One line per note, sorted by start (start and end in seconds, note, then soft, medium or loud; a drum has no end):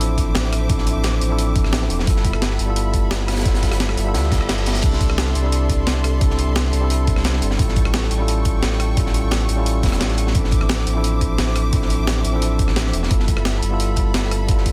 0.00 0.34 A1 medium
0.00 0.67 F3 medium
0.00 0.68 C4 medium
0.00 0.69 D4 medium
0.00 0.71 E4 medium
0.00 0.72 A4 loud
0.00 2.05 C5 medium
0.00 2.05 E5 medium
0.00 2.05 D6 medium
0.00 closed hi-hat medium
0.18 kick medium
0.18 closed hi-hat medium
0.35 0.68 A1 medium
0.35 snare loud
0.35 closed hi-hat medium
0.43 snare soft
0.52 cross-stick soft
0.52 closed hi-hat medium
0.67 0.94 A1 loud
0.67 1.27 F3 medium
0.67 1.27 C4 medium
0.67 1.28 D4 medium
0.67 1.28 E4 medium
0.67 kick loud
0.67 closed hi-hat medium
0.72 1.29 A4 medium
0.78 snare soft
0.87 closed hi-hat medium
0.96 1.20 A1 loud
1.04 snare loud
1.04 closed hi-hat medium
1.13 snare soft
1.21 1.64 A1 medium
1.21 closed hi-hat medium
1.28 2.04 F3 medium
1.28 2.05 C4 medium
1.28 2.06 D4 medium
1.28 2.06 E4 medium
1.32 2.07 A4 loud
1.38 closed hi-hat medium
1.38 closed hi-hat loud
1.56 kick loud
1.56 closed hi-hat medium
1.64 1.89 A1 loud
1.64 cross-stick soft
1.64 snare soft
1.73 snare loud
1.73 closed hi-hat medium
1.81 snare soft
1.90 2.06 E1 medium
1.90 closed hi-hat medium
1.99 snare medium
2.05 2.32 G1 loud
2.05 2.65 G3 medium
2.05 2.65 B3 medium
2.05 2.66 E4 medium
2.05 2.66 F4 medium
2.05 10.31 A4 medium
2.05 7.55 E5 medium
2.05 4.81 B5 medium
2.05 kick loud
2.05 closed hi-hat loud
2.05 closed hi-hat medium
2.10 2.67 A4 medium
2.16 snare medium
2.25 kick loud
2.25 closed hi-hat medium
2.33 2.58 G1 loud
2.33 cross-stick medium
2.42 snare loud
2.42 closed hi-hat loud
2.42 closed hi-hat medium
2.51 snare medium
2.59 3.10 G1 medium
2.59 closed hi-hat medium
2.66 3.42 G3 medium
2.66 3.43 B3 medium
2.66 3.43 E4 medium
2.66 3.44 F4 medium
2.70 3.45 A4 loud
2.76 closed hi-hat loud
2.76 closed hi-hat medium
2.94 kick medium
2.94 closed hi-hat medium
3.11 3.44 G1 medium
3.11 snare loud
3.11 closed hi-hat loud
3.11 closed hi-hat medium
3.20 snare soft
3.28 cross-stick soft
3.28 snare medium
3.28 closed hi-hat medium
3.31 snare medium
3.31 closed hi-hat medium
3.36 snare loud
3.36 closed hi-hat medium
3.41 4.03 G3 medium
3.41 4.03 B3 medium
3.41 snare medium
3.41 closed hi-hat medium
3.45 3.70 G1 loud
3.45 4.04 E4 medium
3.45 4.05 F4 medium
3.45 4.05 A4 medium
3.45 kick loud
3.45 snare loud
3.45 closed hi-hat loud
3.45 closed hi-hat medium
3.54 snare loud
3.54 closed hi-hat medium
3.63 kick medium
3.63 snare loud
3.63 closed hi-hat medium
3.71 3.96 G1 loud
3.71 cross-stick medium
3.71 snare loud
3.71 closed hi-hat medium
3.80 snare loud
3.80 closed hi-hat medium
3.80 closed hi-hat loud
3.89 cross-stick medium
3.89 snare soft
3.97 4.16 G1 medium
3.97 closed hi-hat medium
4.04 4.80 G3 medium
4.04 4.81 B3 medium
4.04 4.81 E4 medium
4.04 4.82 F4 medium
4.08 4.83 A4 loud
4.14 4.39 D2 medium
4.14 snare loud
4.14 closed hi-hat loud
4.14 closed hi-hat medium
4.14 reverse cymbal medium
4.24 snare soft
4.32 kick loud
4.32 snare loud
4.32 closed hi-hat medium
4.41 4.82 G1 medium
4.41 cross-stick soft
4.49 snare loud
4.49 closed hi-hat loud
4.49 closed hi-hat medium
4.58 snare medium
4.58 closed hi-hat soft
4.66 snare loud
4.66 closed hi-hat medium
4.75 snare medium
4.75 closed hi-hat medium
4.81 5.08 C2 loud
4.81 5.41 G3 medium
4.81 5.41 C4 medium
4.81 5.42 D4 medium
4.81 5.42 E4 medium
4.81 7.56 D5 medium
4.81 7.56 C6 medium
4.81 kick loud
4.81 closed hi-hat medium
4.81 closed hi-hat loud
4.81 crash medium
4.86 5.43 A4 medium
4.93 snare medium
5.01 kick loud
5.01 closed hi-hat medium
5.09 5.34 C2 loud
5.09 cross-stick medium
5.18 snare loud
5.18 closed hi-hat loud
5.18 closed hi-hat medium
5.26 snare medium
5.35 5.86 C2 medium
5.35 closed hi-hat medium
5.42 6.18 G3 medium
5.42 6.19 C4 medium
5.42 6.19 D4 medium
5.42 6.20 E4 medium
5.46 6.20 A4 loud
5.52 closed hi-hat medium
5.52 closed hi-hat loud
5.70 kick medium
5.70 closed hi-hat medium
5.87 6.20 C2 medium
5.87 snare loud
5.87 closed hi-hat loud
5.87 closed hi-hat medium
5.96 snare soft
6.04 cross-stick soft
6.04 closed hi-hat medium
6.19 6.46 C2 loud
6.19 6.79 G3 medium
6.19 6.79 C4 medium
6.19 6.80 D4 medium
6.19 6.80 E4 medium
6.19 kick loud
6.19 closed hi-hat medium
6.19 closed hi-hat loud
6.24 6.81 A4 medium
6.30 snare soft
6.39 closed hi-hat medium
6.47 6.72 C2 loud
6.56 snare loud
6.56 closed hi-hat medium
6.65 snare soft
6.73 7.16 C2 medium
6.73 closed hi-hat medium
6.80 7.56 G3 medium
6.80 7.57 C4 medium
6.80 7.57 D4 medium
6.80 7.58 E4 medium
6.84 7.58 A4 loud
6.90 closed hi-hat loud
7.07 kick loud
7.07 closed hi-hat medium
7.16 7.41 C2 loud
7.16 cross-stick soft
7.16 snare medium
7.24 snare loud
7.24 closed hi-hat medium
7.33 snare medium
7.42 7.58 G1 medium
7.42 closed hi-hat medium
7.51 snare medium
7.57 7.84 A1 loud
7.57 8.17 G3 medium
7.57 8.17 C#4 medium
7.57 8.18 E4 medium
7.57 8.18 F4 medium
7.57 10.32 G5 medium
7.57 10.32 C#6 medium
7.57 kick loud
7.57 closed hi-hat medium
7.62 8.19 A4 medium
7.68 snare medium
7.76 kick loud
7.76 closed hi-hat medium
7.85 8.10 A1 loud
7.85 cross-stick medium
7.94 snare loud
7.94 closed hi-hat medium
8.03 snare soft
8.11 8.61 A1 medium
8.11 closed hi-hat medium
8.18 8.94 G3 medium
8.18 8.95 C#4 medium
8.18 8.95 E4 medium
8.18 8.96 F4 medium
8.22 8.96 A4 loud
8.28 closed hi-hat loud
8.28 closed hi-hat medium
8.45 kick medium
8.45 closed hi-hat medium
8.63 8.96 A1 medium
8.63 snare loud
8.63 closed hi-hat medium
8.72 snare soft
8.80 cross-stick medium
8.80 closed hi-hat medium
8.95 9.22 A1 loud
8.95 9.54 G3 medium
8.95 9.55 C#4 medium
8.95 9.56 E4 medium
8.95 9.56 F4 medium
8.95 kick loud
8.95 closed hi-hat medium
8.95 closed hi-hat loud
8.99 9.57 A4 medium
9.06 snare medium
9.14 closed hi-hat medium
9.23 9.48 A1 loud
9.31 snare loud
9.31 closed hi-hat loud
9.31 closed hi-hat medium
9.40 snare soft
9.40 closed hi-hat soft
9.49 9.83 A1 medium
9.49 closed hi-hat medium
9.56 10.32 G3 medium
9.56 10.33 C#4 medium
9.56 10.33 E4 medium
9.56 10.34 F4 medium
9.60 10.34 A4 loud
9.66 closed hi-hat medium
9.83 10.02 E1 loud
9.83 kick loud
9.83 snare loud
9.83 closed hi-hat medium
9.87 snare medium
9.87 closed hi-hat medium
9.92 cross-stick soft
9.92 snare medium
9.92 closed hi-hat medium
10.00 10.34 A1 medium
10.00 snare loud
10.00 closed hi-hat medium
10.10 snare medium
10.10 closed hi-hat soft
10.18 closed hi-hat medium
10.27 snare medium
10.33 10.60 A1 loud
10.33 10.92 F3 medium
10.33 10.93 C4 medium
10.33 10.94 D4 medium
10.33 10.94 E4 medium
10.33 13.08 C5 medium
10.33 14.72 E5 medium
10.33 13.08 D6 medium
10.33 kick loud
10.33 closed hi-hat medium
10.37 10.95 A4 medium
10.44 snare medium
10.51 kick loud
10.51 closed hi-hat medium
10.61 10.85 A1 loud
10.61 cross-stick medium
10.69 snare loud
10.69 closed hi-hat medium
10.78 snare medium
10.87 11.37 A1 medium
10.87 closed hi-hat medium
10.94 11.70 F3 medium
10.94 11.71 C4 medium
10.94 11.71 D4 medium
10.94 11.72 E4 medium
10.98 11.72 A4 loud
11.04 closed hi-hat loud
11.21 kick medium
11.21 closed hi-hat medium
11.38 11.72 A1 medium
11.38 snare loud
11.38 closed hi-hat medium
11.47 snare soft
11.55 cross-stick soft
11.55 closed hi-hat medium
11.71 11.98 A1 loud
11.71 12.30 F3 medium
11.71 12.31 C4 medium
11.71 12.31 D4 medium
11.71 12.32 E4 medium
11.71 kick loud
11.71 closed hi-hat medium
11.75 12.33 A4 medium
11.82 snare soft
11.90 closed hi-hat medium
11.99 12.23 A1 loud
12.07 snare loud
12.07 closed hi-hat medium
12.07 closed hi-hat loud
12.17 snare soft
12.24 12.67 A1 medium
12.24 closed hi-hat medium
12.32 13.08 F3 medium
12.32 13.09 C4 medium
12.32 13.09 D4 medium
12.32 13.10 E4 medium
12.36 13.10 A4 loud
12.42 closed hi-hat loud
12.42 closed hi-hat medium
12.59 kick loud
12.59 closed hi-hat medium
12.68 12.92 A1 loud
12.68 cross-stick soft
12.68 snare soft
12.76 snare loud
12.76 closed hi-hat medium
12.78 closed hi-hat medium
12.86 snare medium
12.93 13.09 E1 medium
12.93 closed hi-hat medium
13.03 snare medium
13.09 13.36 G1 loud
13.09 13.68 G3 medium
13.09 13.69 B3 medium
13.09 13.69 E4 medium
13.09 13.70 F4 medium
13.09 14.72 A4 medium
13.09 14.72 B5 medium
13.09 kick loud
13.09 closed hi-hat loud
13.09 closed hi-hat medium
13.13 13.70 A4 medium
13.20 snare medium
13.28 kick loud
13.28 closed hi-hat medium
13.37 13.61 G1 loud
13.37 cross-stick medium
13.45 snare loud
13.45 closed hi-hat loud
13.54 snare medium
13.62 14.13 G1 medium
13.62 closed hi-hat medium
13.69 14.45 G3 medium
13.69 14.46 B3 medium
13.69 14.47 E4 medium
13.69 14.47 F4 medium
13.73 14.48 A4 loud
13.80 closed hi-hat loud
13.80 closed hi-hat medium
13.96 kick medium
13.96 closed hi-hat medium
14.14 14.47 G1 medium
14.14 snare loud
14.14 closed hi-hat loud
14.24 snare soft
14.31 cross-stick soft
14.31 closed hi-hat medium
14.47 14.72 G1 loud
14.47 14.72 G3 medium
14.47 14.72 B3 medium
14.47 14.72 E4 medium
14.47 14.72 F4 medium
14.47 kick loud
14.47 closed hi-hat medium
14.47 closed hi-hat loud
14.51 14.72 A4 medium
14.58 snare soft
14.66 kick medium
14.66 closed hi-hat medium